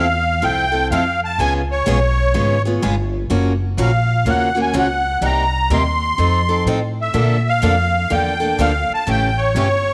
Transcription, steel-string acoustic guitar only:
0.42 0.64 F3 medium
0.42 0.64 C4 medium
0.42 0.64 E4 medium
0.42 0.64 A4 medium
0.72 0.90 C4 soft
0.72 0.90 E4 soft
0.72 0.89 A4 medium
0.92 1.03 F3 medium
0.92 1.03 C4 medium
0.92 1.03 E4 medium
0.92 1.03 A4 medium
1.39 1.61 C#3 medium
1.39 1.60 G#3 medium
1.39 1.61 B3 medium
1.39 1.61 F4 medium
1.39 1.61 G#4 medium
1.86 1.98 C#3 medium
1.86 1.98 G#3 medium
1.86 1.98 B3 medium
1.86 1.98 F4 medium
1.86 1.98 G#4 medium
2.34 2.56 C#3 medium
2.34 2.56 G#3 medium
2.34 2.56 B3 medium
2.34 2.56 F4 medium
2.34 2.56 G#4 medium
2.65 2.82 B3 soft
2.65 2.82 F4 medium
2.65 2.82 G#4 medium
2.82 2.94 C#3 medium
2.82 2.94 G#3 medium
2.82 2.94 B3 medium
2.82 2.94 F4 loud
2.82 2.95 G#4 medium
3.30 3.52 C#3 medium
3.30 3.52 F3 medium
3.30 3.52 A#3 medium
3.30 3.52 C#4 medium
3.30 3.52 F#4 medium
3.78 3.90 C#3 medium
3.78 3.90 F3 medium
3.78 3.90 A#3 medium
3.78 3.90 C#4 medium
3.78 3.90 F#4 medium
4.26 4.48 C#3 medium
4.26 4.48 F3 medium
4.26 4.48 A#3 medium
4.26 4.48 C#4 medium
4.26 4.49 F#4 medium
4.55 4.73 A#3 medium
4.55 4.73 C#4 medium
4.55 4.73 F#4 medium
4.74 4.86 C#3 medium
4.74 4.86 F3 medium
4.74 4.86 A#3 medium
4.74 4.86 C#4 medium
4.74 4.86 F#4 medium
5.22 5.44 C3 medium
5.22 5.44 G3 medium
5.22 5.44 A#3 medium
5.22 5.44 D#4 medium
5.22 5.44 G4 medium
5.70 5.82 C3 medium
5.70 5.82 G3 medium
5.70 5.83 A#3 medium
5.70 5.83 D#4 medium
5.70 5.82 G4 medium
6.18 6.40 F3 medium
6.18 6.40 C4 medium
6.18 6.40 D#4 medium
6.18 6.41 A4 medium
6.49 6.66 C4 soft
6.49 6.66 D#4 soft
6.49 6.66 A4 medium
6.67 6.78 F3 medium
6.67 6.79 C4 medium
6.67 6.79 D#4 medium
6.67 6.79 A4 medium
7.14 7.36 D3 medium
7.14 7.36 F3 medium
7.14 7.36 A#3 medium
7.14 7.36 D4 medium
7.14 7.36 A4 medium
7.62 7.74 D3 medium
7.62 7.74 F3 medium
7.62 7.74 A#3 medium
7.62 7.74 D4 medium
7.62 7.74 A4 loud
8.10 8.32 D3 medium
8.10 8.32 F3 medium
8.10 8.32 A#3 medium
8.10 8.33 D4 medium
8.10 8.33 A4 medium
8.40 8.58 A#3 soft
8.40 8.58 D4 soft
8.40 8.58 A4 medium
8.59 8.70 D3 medium
8.59 8.71 F3 medium
8.59 8.71 A#3 medium
8.59 8.71 D4 medium
8.59 8.71 A4 medium
9.07 9.29 C#3 medium
9.07 9.29 E3 medium
9.07 9.29 A3 medium
9.07 9.29 C#4 medium
9.07 9.29 G4 medium
9.56 9.67 C#3 medium
9.56 9.67 E3 medium
9.56 9.67 A3 medium
9.56 9.67 C#4 medium
9.56 9.67 G4 medium

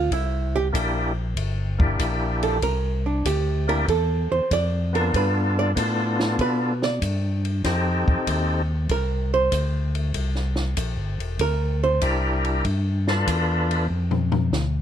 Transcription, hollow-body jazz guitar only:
0.00 0.11 F4 medium
0.13 0.54 E4 medium
0.56 0.67 G4 loud
2.44 2.62 A4 medium
2.63 3.05 A#4 medium
3.06 3.25 D4 soft
3.26 3.68 G4 medium
3.69 3.88 A#4 medium
3.89 4.31 A4 medium
4.32 4.50 C5 medium
4.53 4.94 D5 medium
4.96 5.14 A#4 medium
5.16 5.57 B4 medium
5.59 5.70 D5 loud
6.41 6.82 B4 medium
6.84 7.42 D5 loud
8.91 9.32 A#4 medium
9.34 9.92 C5 medium
11.41 11.82 A#4 medium
11.84 12.42 C5 medium

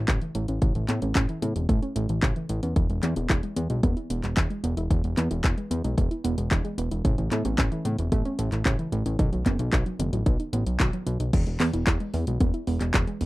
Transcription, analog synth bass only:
0.08 0.20 A1 loud
0.35 0.47 A1 medium
0.48 0.60 A1 medium
0.62 0.73 A1 loud
0.75 0.87 A1 medium
0.89 1.00 A2 medium
1.02 1.14 A1 medium
1.15 1.27 A1 loud
1.42 1.54 A2 medium
1.56 1.67 E1 medium
1.69 1.81 A1 loud
1.96 2.07 A1 loud
2.09 2.21 A1 medium
2.23 2.34 A1 loud
2.49 2.61 A1 loud
2.63 2.74 E2 medium
2.76 2.88 E1 loud
2.89 3.01 E1 medium
3.03 3.15 E2 medium
3.16 3.28 E1 medium
3.30 3.41 E1 loud
3.56 3.68 E2 medium
3.70 3.82 B1 medium
3.83 3.95 E1 loud
4.10 4.22 E1 medium
4.23 4.35 E1 medium
4.37 4.49 E1 loud
4.64 4.75 E1 loud
4.77 4.89 E1 medium
4.90 5.02 E1 loud
5.04 5.15 E1 medium
5.17 5.29 E2 loud
5.31 5.42 E1 medium
5.44 5.56 E1 loud
5.71 5.82 E2 medium
5.84 5.96 B1 medium
5.98 6.09 E1 loud
6.25 6.36 E1 medium
6.38 6.49 E1 medium
6.51 6.63 E1 loud
6.78 6.90 E1 medium
6.91 7.03 E1 medium
7.05 7.16 A1 loud
7.18 7.30 A1 medium
7.31 7.43 A2 medium
7.45 7.56 A1 medium
7.58 7.70 A1 loud
7.85 7.97 A2 medium
7.99 8.10 E1 medium
8.12 8.23 A1 loud
8.39 8.50 A1 loud
8.52 8.64 A1 medium
8.65 8.77 A1 loud
8.92 9.04 A1 loud
9.06 9.17 A1 medium
9.19 9.31 B1 loud
9.32 9.44 B1 medium
9.46 9.57 F#1 medium
9.59 9.71 B1 medium
9.73 9.84 B1 loud
9.99 10.11 F#1 medium
10.13 10.24 A1 medium
10.26 10.38 B1 loud
10.53 10.65 A1 loud
10.66 10.78 B1 medium
10.80 10.91 B1 loud
11.07 11.18 B1 loud
11.20 11.32 B1 medium
11.33 11.45 E1 loud
11.47 11.58 E1 medium
11.60 11.72 E2 medium
11.74 11.85 E1 medium
11.87 11.99 E1 loud
12.14 12.25 E2 medium
12.27 12.39 B1 medium
12.41 12.52 E1 loud
12.67 12.79 E1 medium
12.81 12.92 E1 medium
12.94 13.06 E1 loud
13.21 13.26 E1 medium

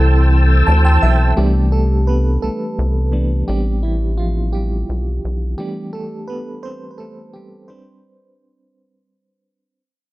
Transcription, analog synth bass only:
0.00 0.63 C2 loud
0.68 0.98 D2 medium
1.03 1.34 B1 medium
1.38 2.38 C2 medium
2.43 2.50 C2 soft
2.79 3.44 C2 medium
3.49 4.84 A1 medium
4.89 5.20 B1 medium
5.25 5.55 B1 medium

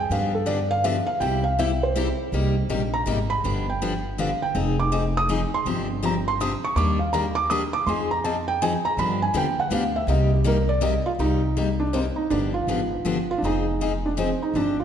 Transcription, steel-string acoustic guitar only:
0.11 0.32 D3 medium
0.11 0.32 F3 medium
0.11 0.32 B3 medium
0.11 0.32 D4 medium
0.11 0.32 G4 medium
0.46 0.58 D3 medium
0.46 0.58 F3 medium
0.46 0.58 B3 medium
0.46 0.58 D4 medium
0.46 0.58 G4 medium
0.84 0.96 D3 medium
0.84 0.96 F3 loud
0.84 0.96 B3 loud
0.84 0.96 D4 loud
0.84 0.96 G4 loud
1.21 1.42 C3 medium
1.21 1.43 G3 medium
1.21 1.43 C4 medium
1.21 1.43 E4 medium
1.21 1.43 G4 medium
1.59 1.70 C3 medium
1.59 1.70 G3 medium
1.59 1.70 C4 medium
1.59 1.70 E4 loud
1.59 1.70 G4 medium
1.96 2.07 C3 loud
1.96 2.07 G3 medium
1.96 2.07 C4 medium
1.96 2.07 E4 loud
1.96 2.08 G4 loud
2.33 2.54 C3 medium
2.33 2.54 G3 medium
2.33 2.55 A#3 medium
2.33 2.54 D#4 medium
2.33 2.55 G4 medium
2.70 2.81 C3 medium
2.70 2.81 G3 medium
2.70 2.81 A#3 medium
2.70 2.81 D#4 medium
2.70 2.81 G4 medium
3.06 3.17 C3 medium
3.06 3.18 G3 medium
3.06 3.18 A#3 medium
3.06 3.18 D#4 loud
3.06 3.18 G4 loud
3.44 3.65 D3 medium
3.44 3.65 F3 medium
3.44 3.65 B3 medium
3.44 3.66 D4 medium
3.44 3.66 G4 medium
3.82 3.92 D3 medium
3.82 3.93 F3 medium
3.82 3.92 B3 medium
3.82 3.93 D4 medium
3.82 3.93 G4 medium
4.18 4.29 D3 medium
4.18 4.29 F3 loud
4.18 4.30 B3 loud
4.18 4.30 D4 medium
4.18 4.30 G4 loud
4.55 4.76 F3 medium
4.55 4.76 C4 medium
4.55 4.76 D#4 medium
4.55 4.76 G#4 medium
4.92 5.03 F3 medium
4.92 5.03 C4 medium
4.92 5.03 D#4 medium
4.92 5.03 G#4 medium
5.29 5.40 F3 medium
5.29 5.40 C4 medium
5.29 5.40 D#4 loud
5.29 5.40 G#4 loud
5.66 5.87 C3 medium
5.66 5.87 F3 medium
5.66 5.87 C4 medium
5.66 5.87 D4 medium
5.66 5.87 G4 medium
6.03 6.14 C3 medium
6.03 6.14 F3 medium
6.03 6.14 C4 medium
6.03 6.14 D4 medium
6.03 6.14 G4 medium
6.40 6.51 C3 medium
6.40 6.51 F3 medium
6.40 6.52 C4 loud
6.40 6.51 D4 medium
6.40 6.52 G4 loud
6.77 6.98 D#3 medium
6.77 6.98 G3 medium
6.77 6.98 A#3 medium
6.77 6.98 D4 medium
6.77 6.98 G4 medium
7.13 7.25 D#3 medium
7.13 7.25 G3 medium
7.13 7.25 A#3 medium
7.13 7.25 D4 medium
7.13 7.25 G4 medium
7.50 7.61 D#3 loud
7.50 7.62 G3 medium
7.50 7.62 A#3 loud
7.50 7.62 D4 loud
7.50 7.62 G4 loud
7.87 8.08 F3 medium
7.87 8.09 C4 medium
7.87 8.09 D#4 medium
7.87 8.09 G#4 medium
8.24 8.35 F3 medium
8.24 8.35 C4 medium
8.24 8.36 D#4 medium
8.24 8.36 G#4 medium
8.62 8.73 F3 loud
8.62 8.72 C4 loud
8.62 8.73 D#4 loud
8.62 8.73 G#4 loud
8.98 9.19 D3 medium
8.98 9.19 F3 medium
8.98 9.19 B3 medium
8.98 9.19 D4 medium
8.98 9.20 G4 medium
9.34 9.45 D3 medium
9.34 9.46 F3 medium
9.34 9.46 B3 medium
9.34 9.46 D4 medium
9.34 9.46 G4 loud
9.71 9.82 D3 medium
9.71 9.82 F3 loud
9.71 9.83 B3 medium
9.71 9.83 D4 loud
9.71 9.83 G4 loud
10.08 10.30 C3 medium
10.08 10.30 G3 medium
10.08 10.30 A#3 medium
10.08 10.30 D#4 medium
10.08 10.30 G4 medium
10.44 10.56 C3 medium
10.44 10.56 G3 loud
10.44 10.57 A#3 loud
10.44 10.57 D#4 medium
10.44 10.57 G4 loud
10.81 10.93 C3 loud
10.81 10.93 G3 medium
10.81 10.93 A#3 loud
10.81 10.93 D#4 medium
10.81 10.93 G4 loud
11.19 11.41 C3 medium
11.19 11.41 G3 medium
11.19 11.41 A#3 medium
11.19 11.41 D#4 medium
11.19 11.41 G4 medium
11.57 11.68 C3 medium
11.57 11.68 G3 medium
11.57 11.68 A#3 medium
11.57 11.68 D#4 medium
11.57 11.68 G4 medium
11.93 12.05 C3 medium
11.93 12.05 G3 medium
11.93 12.05 A#3 medium
11.93 12.05 D#4 medium
11.93 12.05 G4 medium
12.30 12.52 D3 medium
12.30 12.52 F3 medium
12.30 12.52 B3 medium
12.30 12.52 D4 medium
12.30 12.52 G4 medium
12.68 12.79 D3 medium
12.68 12.79 F3 medium
12.68 12.80 B3 medium
12.68 12.80 D4 medium
12.68 12.80 G4 medium
13.05 13.16 D3 medium
13.05 13.17 F3 medium
13.05 13.17 B3 medium
13.05 13.17 D4 medium
13.05 13.17 G4 loud
13.44 13.64 F3 medium
13.44 13.65 C4 medium
13.44 13.65 D#4 medium
13.44 13.65 G#4 medium
13.81 13.92 F3 medium
13.81 13.92 C4 medium
13.81 13.92 D#4 loud
13.81 13.92 G#4 medium
14.17 14.28 F3 medium
14.17 14.28 C4 medium
14.17 14.28 D#4 medium
14.17 14.29 G#4 loud
14.55 14.76 C3 medium
14.55 14.76 F3 medium
14.55 14.76 C4 medium
14.55 14.76 D4 medium
14.55 14.77 G4 medium

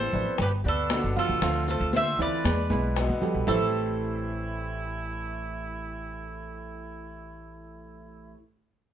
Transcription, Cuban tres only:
0.00 0.37 C5 loud
0.42 0.48 B4 medium
0.68 1.17 A4 medium
1.19 1.65 A4 medium
1.70 1.93 A4 medium
1.96 2.21 E5 loud
2.22 3.19 D5 medium
3.48 8.34 A4 medium

